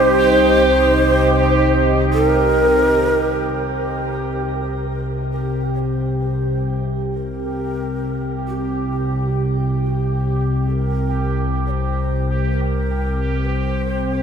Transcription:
Already playing: C2 C3 D#4 G4 C5 D#5
2.14 A4
2.27 A#4
3.50 C2 C3 G4 C5
4.41 A#4
5.31 A#4
5.75 C#5
5.79 C5
6.20 C5
7.14 A#4
8.47 G4
8.90 G4
9.83 F#4
9.94 G4
10.73 A#4
11.67 C#5
11.71 C5
12.54 A#4
13.44 C5

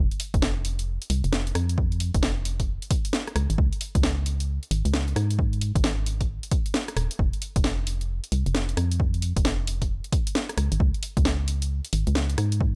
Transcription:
0.11 closed hi-hat
0.20 open hi-hat
0.34 F1, kick, closed hi-hat
0.42 snare
0.65 open hi-hat
0.79 closed hi-hat
1.02 closed hi-hat
1.10 C2, open hi-hat
1.24 F1, closed hi-hat
1.33 snare
1.47 closed hi-hat
1.55 F2, cross-stick, open hi-hat
1.69 closed hi-hat
1.78 kick
1.92 closed hi-hat
2.00 open hi-hat
2.14 F1, kick, closed hi-hat
2.23 snare
2.45 open hi-hat
2.60 kick, open hi-hat
2.82 closed hi-hat
2.91 kick, open hi-hat
3.05 closed hi-hat
3.13 snare
3.27 cross-stick, closed hi-hat
3.36 C#2, cross-stick, open hi-hat
3.50 G#1, closed hi-hat
3.58 C#2, kick
3.73 closed hi-hat
3.81 open hi-hat
3.95 C#2, kick, closed hi-hat
4.03 snare
4.26 open hi-hat
4.40 closed hi-hat
4.63 closed hi-hat
4.71 G#1, open hi-hat
4.85 C#2, closed hi-hat
4.94 snare
5.08 closed hi-hat
5.16 G#2, cross-stick, open hi-hat
5.31 closed hi-hat
5.39 kick
5.53 closed hi-hat
5.61 open hi-hat
5.75 G#1, kick, closed hi-hat
5.84 snare
6.06 open hi-hat
6.21 kick, open hi-hat
6.43 closed hi-hat
6.51 kick, open hi-hat
6.66 closed hi-hat
6.74 snare
6.88 cross-stick, closed hi-hat
6.97 D#1, cross-stick, open hi-hat
7.11 closed hi-hat
7.19 F1, kick
7.33 closed hi-hat
7.42 open hi-hat
7.56 F1, kick, closed hi-hat
7.64 snare
7.87 open hi-hat
8.01 closed hi-hat
8.24 closed hi-hat
8.32 C2, open hi-hat
8.46 F1, closed hi-hat
8.55 snare
8.69 closed hi-hat
8.77 F2, cross-stick, open hi-hat
8.92 closed hi-hat
9.00 kick
9.14 closed hi-hat
9.22 open hi-hat
9.37 F1, kick, closed hi-hat
9.45 snare
9.67 open hi-hat
9.82 kick, open hi-hat
10.04 closed hi-hat
10.12 kick, open hi-hat
10.27 closed hi-hat
10.35 snare
10.49 cross-stick, closed hi-hat
10.58 C#2, cross-stick, open hi-hat
10.72 G#1, closed hi-hat
10.80 C#2, kick
10.94 closed hi-hat
11.03 open hi-hat
11.17 C#2, kick, closed hi-hat
11.25 snare
11.48 open hi-hat
11.62 closed hi-hat
11.85 closed hi-hat
11.93 G#1, open hi-hat
12.07 C#2, closed hi-hat
12.15 snare
12.30 closed hi-hat
12.38 G#2, cross-stick, open hi-hat
12.52 closed hi-hat
12.61 kick

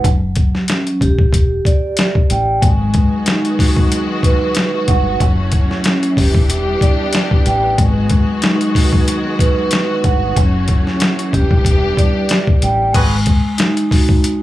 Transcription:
0.04 F#1 F#3, kick, closed hi-hat
0.35 kick, closed hi-hat
0.55 snare
0.68 C#4, snare, closed hi-hat
0.87 closed hi-hat
1.01 E1 G4, kick, closed hi-hat
1.19 kick
1.33 kick, closed hi-hat
1.65 D5, kick, closed hi-hat
1.97 snare, closed hi-hat
2.15 kick
2.30 A1 G5, closed hi-hat
2.61 G#1 D#3 F#3 G#3 B3 F#4, kick, closed hi-hat
2.94 kick, closed hi-hat
3.26 D#4, snare, closed hi-hat
3.45 closed hi-hat
3.59 F#4, kick, snare, open hi-hat
3.77 kick
3.92 closed hi-hat
4.23 B4, kick, closed hi-hat
4.55 snare, closed hi-hat
4.88 G1 F#5, kick, closed hi-hat
5.19 F#1 E3 F#3 A3 C#4, kick, closed hi-hat
5.52 kick, closed hi-hat
5.71 snare
5.84 C#4, snare, closed hi-hat
6.03 closed hi-hat
6.17 E1 G3 B3 D4 G4, kick, open hi-hat
6.35 kick
6.50 closed hi-hat
6.81 D5, kick, closed hi-hat
7.13 snare, closed hi-hat
7.31 kick
7.46 A1 G5, closed hi-hat
7.77 G#1 D#3 F#3 G#3 F#4, kick, closed hi-hat
8.10 kick, closed hi-hat
8.42 D#4, snare, closed hi-hat
8.61 closed hi-hat
8.75 F#4, kick, snare, open hi-hat
8.93 kick
9.08 closed hi-hat
9.39 B4, kick, closed hi-hat
9.71 snare, closed hi-hat
10.04 G1 F#5, kick, closed hi-hat
10.36 F#1 E3 F#3 A3 C#4, kick, closed hi-hat
10.68 kick, closed hi-hat
10.87 snare
11.00 C#4, snare, closed hi-hat
11.19 closed hi-hat
11.33 E1 G3 B3 D4 G4, kick, closed hi-hat
11.51 kick
11.65 kick, closed hi-hat
11.97 D5, kick, closed hi-hat
12.29 snare, closed hi-hat
12.47 kick
12.62 A1 G5, closed hi-hat
12.93 G#1 G#3 F#4 G#4 B4, kick, closed hi-hat, crash
13.26 kick, closed hi-hat
13.58 D#4, snare, closed hi-hat
13.77 closed hi-hat
13.91 F#4, kick, snare, open hi-hat
14.09 kick
14.24 closed hi-hat

